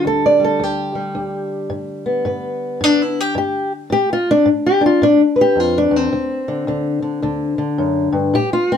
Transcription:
0.00 3.91 D3 medium
0.00 0.39 G3 medium
0.05 0.56 D2 medium
0.05 0.24 A4 medium
0.26 0.43 D5 medium
0.40 0.94 G3 soft
0.44 0.63 A4 medium
0.60 1.11 D2 medium
0.60 1.72 G4 loud
0.95 2.84 G3 soft
1.15 1.66 D2 medium
1.70 2.21 G2 medium
2.06 3.20 B3 soft
2.25 2.77 G2 medium
2.25 3.02 B4 soft
2.81 3.32 G2 medium
2.81 3.01 D4 loud
3.02 3.19 E4 medium
3.20 3.37 G4 medium
3.35 3.87 G2 medium
3.35 3.72 G4 medium
3.90 4.42 G#2 medium
3.90 4.10 G4 loud
4.13 4.30 F4 loud
4.31 4.48 D4 loud
4.46 4.97 G#2 medium
4.66 4.84 G4 loud
4.81 5.03 D4 soft
4.86 5.03 F4 medium
5.02 5.53 G#2 medium
5.02 5.21 D4 loud
5.36 6.10 B4 medium
5.41 5.60 G4 medium
5.56 5.91 F2 medium
5.60 5.77 F4 loud
5.78 5.96 D4 medium
5.91 6.12 E2 medium
5.96 7.61 C4 loud
6.13 6.64 D2 medium
6.48 6.67 D3 soft
6.67 7.18 D2 medium
6.67 7.01 D3 medium
7.02 7.22 D3 soft
7.22 7.74 D2 medium
7.22 7.57 D3 medium
7.58 8.33 D3 soft
7.78 8.12 F#2 medium
8.12 8.33 G2 medium
8.34 8.77 A2 medium
8.34 8.52 G4 loud
8.53 8.71 F4 loud
8.72 8.77 C4 medium

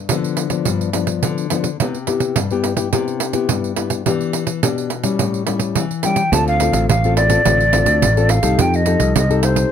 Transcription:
0.09 0.64 D3 medium
0.09 0.48 F3 soft
0.09 0.48 B3 medium
0.09 0.48 D4 medium
0.09 pandeiro medium
0.24 pandeiro soft
0.37 pandeiro medium
0.50 0.89 F3 medium
0.50 0.90 B3 medium
0.50 0.90 D4 medium
0.50 pandeiro medium
0.65 1.20 G2 medium
0.65 pandeiro medium
0.81 pandeiro soft
0.93 1.46 F3 medium
0.93 1.47 B3 medium
0.93 1.47 D4 medium
0.93 pandeiro medium
1.07 pandeiro medium
1.23 1.77 D3 medium
1.23 pandeiro medium
1.38 pandeiro soft
1.50 1.68 F3 medium
1.50 1.68 B3 medium
1.50 1.68 D4 medium
1.50 pandeiro medium
1.64 pandeiro medium
1.80 2.34 C3 medium
1.80 1.97 B3 medium
1.80 1.97 E4 soft
1.80 1.97 G4 medium
1.80 pandeiro medium
1.94 pandeiro soft
2.07 2.34 B3 medium
2.07 2.34 E4 soft
2.07 2.35 G4 medium
2.07 pandeiro medium
2.20 pandeiro medium
2.36 2.90 G2 medium
2.36 pandeiro medium
2.51 2.75 B3 medium
2.51 2.75 E4 medium
2.51 2.75 G4 medium
2.51 pandeiro soft
2.64 pandeiro medium
2.77 2.87 B3 medium
2.77 2.88 E4 medium
2.77 2.88 G4 medium
2.77 pandeiro medium
2.93 3.47 C3 medium
2.93 3.19 B3 medium
2.93 3.20 E4 medium
2.93 3.20 G4 medium
2.93 pandeiro medium
3.08 pandeiro soft
3.20 pandeiro medium
3.33 3.72 B3 medium
3.33 3.73 E4 medium
3.33 3.73 G4 medium
3.33 pandeiro medium
3.49 4.04 G2 medium
3.49 pandeiro medium
3.64 pandeiro soft
3.76 4.01 B3 soft
3.76 4.02 E4 medium
3.76 4.02 G4 medium
3.76 pandeiro medium
3.90 pandeiro medium
4.06 4.60 E3 medium
4.06 4.43 B3 soft
4.06 4.43 D4 medium
4.06 4.43 G4 medium
4.06 pandeiro medium
4.21 pandeiro soft
4.33 pandeiro medium
4.47 pandeiro medium
4.63 5.17 B2 medium
4.63 4.89 B3 medium
4.63 4.89 D4 soft
4.63 4.90 G4 medium
4.63 pandeiro medium
4.78 pandeiro soft
4.90 pandeiro medium
5.04 5.42 G3 medium
5.04 5.43 C#4 medium
5.04 5.43 E4 medium
5.04 pandeiro medium
5.19 5.73 A2 medium
5.19 pandeiro medium
5.34 pandeiro soft
5.47 5.84 G3 medium
5.47 5.84 C#4 medium
5.47 5.84 E4 medium
5.47 pandeiro medium
5.59 pandeiro medium
5.75 6.30 E3 medium
5.75 pandeiro medium
5.91 pandeiro soft
6.03 6.21 G3 medium
6.03 6.21 C#4 soft
6.03 6.21 E4 medium
6.03 6.34 G5 medium
6.03 pandeiro medium
6.16 pandeiro medium
6.32 6.68 D2 medium
6.32 6.87 D3 medium
6.32 6.57 C4 medium
6.32 6.57 F4 medium
6.32 6.57 A4 medium
6.32 6.47 A5 loud
6.32 pandeiro medium
6.48 6.87 F5 loud
6.48 pandeiro soft
6.60 6.87 C4 medium
6.60 6.88 F4 medium
6.60 6.88 A4 medium
6.60 pandeiro medium
6.73 6.86 A1 medium
6.73 pandeiro medium
6.89 7.37 A1 medium
6.89 7.43 A2 medium
6.89 7.16 F5 loud
6.89 pandeiro medium
7.04 7.28 C4 medium
7.04 7.28 F4 medium
7.04 7.28 A4 medium
7.04 pandeiro soft
7.17 8.32 D5 medium
7.17 pandeiro medium
7.30 7.40 C4 medium
7.30 7.41 F4 medium
7.30 7.41 A4 medium
7.30 pandeiro medium
7.45 7.82 A1 medium
7.45 8.00 D3 medium
7.45 7.63 C4 medium
7.45 7.63 F4 medium
7.45 7.63 A4 medium
7.45 pandeiro medium
7.60 pandeiro soft
7.73 8.11 C4 medium
7.73 8.12 F4 medium
7.73 8.12 A4 medium
7.73 pandeiro medium
7.86 8.04 D2 medium
7.86 pandeiro medium
8.02 8.38 A1 medium
8.02 8.56 A2 medium
8.02 pandeiro medium
8.17 8.40 C4 medium
8.17 8.40 F4 medium
8.17 8.41 A4 medium
8.17 pandeiro soft
8.29 8.62 F5 medium
8.29 pandeiro medium
8.43 8.56 C2 medium
8.43 8.82 D#4 medium
8.43 8.82 G4 medium
8.43 8.82 A4 medium
8.43 pandeiro medium
8.58 8.95 F2 medium
8.58 9.12 F3 medium
8.58 8.77 G5 medium
8.58 pandeiro medium
8.74 9.17 D#5 medium
8.74 pandeiro soft
8.86 9.24 D#4 medium
8.86 9.25 G4 medium
8.86 9.25 A4 medium
8.86 pandeiro medium
9.00 9.13 C2 medium
9.00 pandeiro medium
9.15 9.64 C2 medium
9.15 9.69 C3 medium
9.15 9.43 D#5 medium
9.15 pandeiro medium
9.30 9.68 D#4 medium
9.30 9.68 G4 medium
9.30 9.68 A4 medium
9.30 pandeiro soft
9.43 9.72 C5 medium
9.43 pandeiro medium
9.56 pandeiro medium

